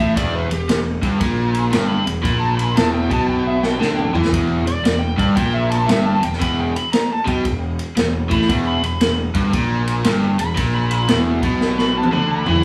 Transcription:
Already playing: A2
0.00 A1 E5
0.15 E1 E2 D5, kick, ride
0.35 B4
0.50 E1 E2 G4, ride
0.69 E1 E2, snare, ride
1.02 G1 G2, kick, ride
1.20 A#1 A#2, kick, ride
1.54 ride
1.72 G1 G2, snare, ride
1.89 B5
2.07 E1 E2, ride
2.23 A#1 A#2 B5, kick, ride
2.40 A5
2.57 B5, ride
2.76 E1 E2 A5, snare, ride
2.94 G5
3.10 B1 B2 A5, kick, ride
3.28 G5, kick
3.47 E5
3.63 G5, snare
3.80 D2 D3, snare
3.99 mid tom
4.14 E2 E3, floor tom
4.24 snare
4.32 E1 E2, kick, ride
4.66 E1 E2 D5, ride
4.83 E1 E2, snare, ride
4.99 G5
5.17 G1 G2 D5, kick, ride
5.35 A#1 A#2 G5, kick, ride
5.54 E5
5.70 A5, ride
5.86 G1 G2 E5, snare, ride
6.06 A5
6.22 E1 E2 G5, ride
6.33 snare
6.40 E1 E2 B5, kick, ride
6.60 G5
6.76 B5, ride
6.93 A#5, snare, ride
7.13 A5
7.26 B1 B2 G5, kick, ride
7.45 E1 E2, kick, ride
7.79 ride
7.96 E1 E2, snare, ride
8.30 A1 A2 B5, kick, ride
8.41 snare
8.49 E1 E2, kick, ride
8.67 B5
8.82 E1 E2, ride
8.86 B5
9.01 E1 E2, snare, ride
9.34 G1 G2, kick, ride
9.53 A#1 A#2, kick, ride
9.87 ride
10.04 G1 G2, snare, ride
10.39 E1 E2 B5, ride
10.56 A#1 A#2, kick, ride
10.75 B5
10.91 B5, ride
11.08 E1 E2, snare, ride
11.43 B1 B2, kick, ride
11.61 snare
11.78 B5, snare
11.98 A5
12.03 high tom
12.12 D2 D3 B5, mid tom
12.31 B5
12.46 E2 E3, floor tom
12.55 floor tom

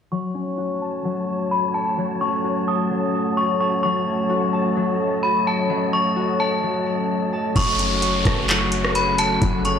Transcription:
0.11 F#3 A3 C#4 F#4 A4 C#5 A5 C#6
0.34 C#4
0.57 F#4
0.81 A5
1.04 F#3
1.51 B5
1.74 A5
1.97 F#3
2.21 C#4 C#6
2.44 F#4
2.67 A5 D#6
2.91 F#3
3.37 C#6
3.60 A5 C#6
3.83 F#3 D#5 C#6
4.07 C#4
4.30 F#4
4.53 A5
4.76 F#3
5.23 B5
5.47 A5
5.70 F#3
5.93 C#4 C#6
6.16 F#4
6.39 A5
6.63 F#3
7.33 A5
7.55 F#1 C#3 F#3 A3 C#4 F#4 A4 F#5 C#6, kick, closed hi-hat, downlifter
7.78 C#4, closed hi-hat
8.02 F#4, closed hi-hat
8.25 F#1 A5, kick, cross-stick, closed hi-hat
8.48 F#3, clap, closed hi-hat
8.72 closed hi-hat
8.85 cross-stick
8.95 B5, closed hi-hat
9.18 A5, closed hi-hat
9.41 F#1 F#3, kick, closed hi-hat
9.65 C#4 C#6, closed hi-hat

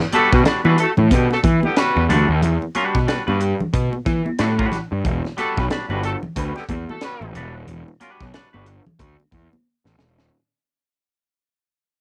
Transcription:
0.00 snare
0.13 G3 A3 D4 F#4 A4 B4, closed hi-hat, high conga
0.32 B2 G3 B3 F#4 B4, kick, snare
0.45 G3 D4 F#4 B4, muted picked electric bass stroke, snare, closed hi-hat, muted conga
0.65 E3 G3 B3 D4 F#4 B4, high conga
0.78 A3 F#4 A4, closed hi-hat
0.97 A2, low conga
1.11 B2 D3 G3 B3 G4, kick, closed hi-hat
1.31 A3 F#4 A4, snare, muted conga
1.44 E3, kick, closed hi-hat, high conga
1.63 D3 G3 B3 G4, high conga
1.76 G3 B3 F#4 B4, snare, closed hi-hat, muted conga
1.96 E2, muted conga
2.09 D2 G3 D4 F#4 B4, closed hi-hat, low conga
2.29 D#2
2.42 E2, closed hi-hat, muted conga, low conga
2.62 muted conga
2.75 G3 D4 F#4 B4, closed hi-hat, high conga
2.95 B2, kick, snare
3.07 G3 D4 F#4 B4, muted picked electric bass stroke, snare, closed hi-hat, muted conga
3.27 G2 G3 D4 F#4 B4, high conga
3.40 closed hi-hat
3.60 low conga
3.73 B2, kick, closed hi-hat, muted conga
3.93 muted conga
4.06 E3, kick, snare, closed hi-hat, high conga
4.26 high conga
4.39 A2 G3 D4 F#4 B4, snare, closed hi-hat, muted conga
4.59 G3 D4 F#4 B4, kick, muted conga
4.72 snare, closed hi-hat, low conga
4.92 G2
5.05 E1, kick, closed hi-hat, low conga
5.25 snare, muted conga
5.37 G3 A3 D4 F#4 A4 B4, closed hi-hat, high conga
5.57 B1 G3 B3 F#4 B4, kick, snare
5.70 G3 D4 F#4 B4, muted picked electric bass stroke, snare, closed hi-hat, muted conga
5.89 G1 G3 B3 D4 F#4 B4, high conga
6.03 A3 F#4 A4, closed hi-hat
6.23 low conga
6.36 D2 G3 B3 F#4 B4, kick, closed hi-hat, muted conga
6.56 D3 G3 B3 G4, snare, muted conga
6.69 E2, kick, closed hi-hat, high conga
6.89 A3 F#4 A4, high conga
7.01 G3 B3 F#4 B4, snare, closed hi-hat, muted conga
7.21 A1, muted conga
7.34 E1 G3 D4 F#4 B4, closed hi-hat, low conga
7.54 D#1
7.67 E1, closed hi-hat, low conga
7.88 muted conga
8.00 G3 D4 F#4 B4, closed hi-hat, high conga
8.21 B1, kick, snare
8.33 G3 D4 F#4 B4, muted picked electric bass stroke, snare, closed hi-hat, muted conga
8.53 G1 G3 D4 F#4 B4, high conga
8.66 closed hi-hat
8.86 low conga
8.99 D2, kick, closed hi-hat, muted conga
9.20 muted conga
9.32 E2, kick, snare, closed hi-hat, high conga
9.53 high conga
9.85 A1, snare, muted conga
9.98 E1, snare, low conga
10.19 D#1, snare

